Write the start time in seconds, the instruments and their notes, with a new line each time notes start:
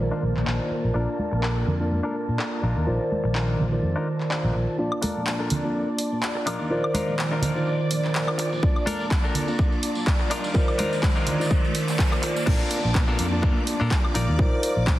Already playing: tine electric piano D#3 F4 A#4 C5 D5, string machine A#3 A5
0.11 clean electric guitar D4 D#4 F4 C5, tambourine
0.23 fingered electric bass A#1
0.35 fingered electric bass A#1, muted clean electric guitar stroke, clap
0.46 fingered electric bass A#1, clean electric guitar D4 D#4 F4 A#4, clap
0.71 muted fingered electric bass stroke
0.84 fingered electric bass A#1, tambourine
0.94 fingered electric bass A#1, tine electric piano A#3 D4 F4 D5 A5, clean electric guitar D4 A4 A#4, tambourine
1.08 tambourine
1.18 muted clean electric guitar stroke, high conga
1.31 fingered electric bass A#1, muted clean electric guitar stroke, tambourine
1.42 clean electric guitar D4 A4 A#4, clap
1.67 fingered electric bass F2, low conga
1.80 tine electric piano A#3 D4 F4 D5 A5, tambourine
1.91 tambourine, high conga
2.03 clean electric guitar D4 A4 A#4, tambourine
2.28 fingered electric bass A#2, muted clean electric guitar stroke, tambourine
2.38 clean electric guitar D4 A4 A#4, clap
2.53 tambourine
2.62 fingered electric bass A#1, clean electric guitar D4 D#4 F4 A#4
2.76 fingered electric bass D#2, tambourine
2.86 fingered electric bass A#1, tine electric piano D#3 F4 A#4 C5 D5, tambourine
3.01 tambourine
3.10 muted clean electric guitar stroke, high conga
3.24 fingered electric bass A#1, muted clean electric guitar stroke, tambourine
3.34 clean electric guitar D4 D#4 F4 A#4, clap, tambourine
3.59 fingered electric bass A#1, low conga
3.71 tine electric piano D#3 F4 A#4 C5 D5, tambourine
3.82 fingered electric bass F2, tambourine, high conga
3.96 clean electric guitar D4 D#4 F4 A#4, tambourine
4.20 muted clean electric guitar stroke, clap, tambourine
4.30 clean electric guitar D4 D#4 F4 A#4, clap
4.44 fingered electric bass A#1
4.55 fingered electric bass A#1
4.69 tambourine
4.78 fingered electric bass A#1, tine electric piano A#3 D4 F4 D5 A5, string machine D5 D6, riser
4.92 high woodblock
5.02 clean electric guitar D4 A4 A#4, open hi-hat, high conga
5.16 fingered electric bass A#1, tambourine
5.27 clap, tambourine
5.39 clean electric guitar D4 A4 A#4, tambourine
5.50 fingered electric bass F2, open hi-hat, low conga
5.63 tine electric piano A#3 D4 F4 D5 A5, tambourine
5.75 tambourine
5.88 tambourine
5.99 open hi-hat
6.12 fingered electric bass A#2, tambourine
6.23 clap
6.35 muted clean electric guitar stroke
6.46 fingered electric bass A#1, clean electric guitar D4 D#4 F4 A#4, open hi-hat, high woodblock
6.60 fingered electric bass D#2, tambourine
6.70 fingered electric bass A#1, tine electric piano D#3 F4 A#4 C5 D5, tambourine
6.84 high woodblock
6.94 clean electric guitar D4 D#4 F4 A#4, open hi-hat, high conga
7.08 fingered electric bass A#1, tambourine
7.18 clap, tambourine
7.31 clean electric guitar D4 D#4 F4 A#4, tambourine
7.42 fingered electric bass A#1, open hi-hat, low conga
7.55 tine electric piano D#3 F4 A#4 C5 D5, tambourine
7.67 fingered electric bass A#1, tambourine
7.81 tambourine
7.91 fingered electric bass A#1, open hi-hat
8.04 fingered electric bass A#1, clap, tambourine
8.15 fingered electric bass A#1, clap
8.28 muted clean electric guitar stroke, tambourine, high woodblock
8.38 muted clean electric guitar stroke, muted fingered electric bass stroke, open hi-hat
8.51 fingered electric bass A#1, muted clean electric guitar stroke, tambourine
8.63 tine electric piano A#3 D4 F4 D5 A5, kick
8.76 tambourine, high woodblock
8.86 clean electric guitar D4 A4 A#4, open hi-hat, high conga
9.00 fingered electric bass A#1, tambourine
9.11 kick, clap
9.24 clean electric guitar D4 A4 A#4, tambourine
9.35 fingered electric bass F2, open hi-hat, low conga
9.48 tine electric piano A#3 D4 F4 D5 A5, tambourine
9.59 kick, tambourine
9.72 tambourine
9.83 open hi-hat
9.95 fingered electric bass A#2, tambourine
10.06 kick, clap, tambourine
10.19 muted clean electric guitar stroke, tambourine
10.30 fingered electric bass A#1, clean electric guitar D4 D#4 F4 A#4, open hi-hat, high woodblock
10.44 fingered electric bass D#2, tambourine
10.54 tine electric piano D#3 F4 A#4 C5 D5, kick, tambourine
10.68 tambourine, high woodblock
10.78 clean electric guitar D4 D#4 F4 A#4, open hi-hat, high conga
10.92 fingered electric bass A#1, tambourine
11.03 kick, clap
11.15 clean electric guitar D4 D#4 F4 A#4, tambourine
11.27 fingered electric bass A#1, open hi-hat, low conga
11.39 tine electric piano D#3 F4 A#4 C5 D5, tambourine
11.51 kick, tambourine, high conga
11.65 tambourine
11.75 open hi-hat
11.88 clap, tambourine
11.99 kick, clap, tambourine
12.12 fingered electric bass A#1, muted clean electric guitar stroke, tambourine, high woodblock
12.22 fingered electric bass A#1, muted clean electric guitar stroke, open hi-hat
12.36 muted clean electric guitar stroke, tambourine
12.46 fingered electric bass A#1, tine electric piano A#3 D4 F4 D5 A5, clean electric guitar D4 F4 A4 A#4, string machine D5 D6, kick, crash, downlifter
12.71 open hi-hat
12.85 fingered electric bass A#1
12.95 kick, clap
13.08 clean electric guitar D4 F4 A4 A#4
13.19 fingered electric bass F2, open hi-hat
13.32 tine electric piano A#3 D4 F4 D5 A5
13.42 clean electric guitar D4 F4 A4 A#4, kick
13.67 open hi-hat
13.80 fingered electric bass A#2, clean electric guitar D4 F4 A4 A#4
13.91 kick, clap
14.05 high woodblock
14.14 fingered electric bass A#1, clean electric guitar D#4 F4 A#4 D5, open hi-hat
14.28 fingered electric bass D#2
14.38 fingered electric bass A#1, tine electric piano D#4 F4 A#4 C5 D5, kick
14.63 open hi-hat
14.76 fingered electric bass A#1
14.87 kick, clap